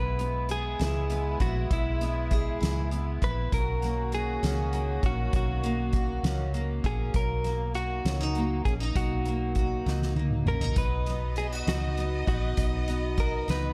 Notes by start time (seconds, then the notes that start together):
Already playing: B1 G#3 B3 E4 B4
0.19 B3, closed hi-hat
0.49 G#4, closed hi-hat
0.79 C#2 E4, snare, closed hi-hat
1.10 B3, closed hi-hat
1.40 A#1 E4 F#4, kick, closed hi-hat
1.71 B1 E4, kick, closed hi-hat
2.01 B3, snare, closed hi-hat
2.31 G#4, kick, closed hi-hat
2.61 C#2 E4, snare, closed hi-hat
2.91 B3, closed hi-hat
3.22 A#1 E4 B4, kick, closed hi-hat
3.52 B1 D#3 F#3 A#3 C#4 F#4 A#4, kick, closed hi-hat
3.82 A#3, snare, closed hi-hat
4.12 F#4 G#4, closed hi-hat
4.43 C#2 C#4, snare, closed hi-hat
4.73 A#3, closed hi-hat
5.03 A#1 C#4 F#4, kick, closed hi-hat
5.33 B1 D#4 F#4, kick, closed hi-hat
5.63 A#3, closed hi-hat
5.93 F#4, kick, closed hi-hat
6.23 C#2 C#4, snare, closed hi-hat
6.54 A#3, closed hi-hat
6.84 A#1 C#4 G#4, kick, closed hi-hat
7.14 B1 A#4, kick, closed hi-hat
7.44 A#3, snare, closed hi-hat
7.74 F#4, closed hi-hat
8.05 C#2 C#4, snare, closed hi-hat
8.21 D#4
8.35 A#3, closed hi-hat
8.65 A#1 C#4 G#4, kick, closed hi-hat
8.80 D#4
8.95 B1 F#4, kick, closed hi-hat
9.25 A#3, closed hi-hat
9.55 F#4, kick, closed hi-hat
9.86 C#2 D#4, snare
10.02 snare
10.16 A#3, high tom
10.31 mid tom
10.46 A#1 C#4 A#4, mid tom
10.61 D#4, floor tom
10.76 B1 B3 B4 D#5, kick, closed hi-hat
11.06 B3, snare, closed hi-hat
11.36 E4 G#4, closed hi-hat
11.52 F#4
11.67 C#2 D#4 F#4, snare, closed hi-hat
11.97 B3, closed hi-hat
12.27 A#1 D#4 F#4, kick, closed hi-hat
12.57 B1, kick, closed hi-hat
12.88 B3, snare, closed hi-hat
13.18 F#4 A#4, kick, closed hi-hat
13.48 C#2 D#4 B4, snare, closed hi-hat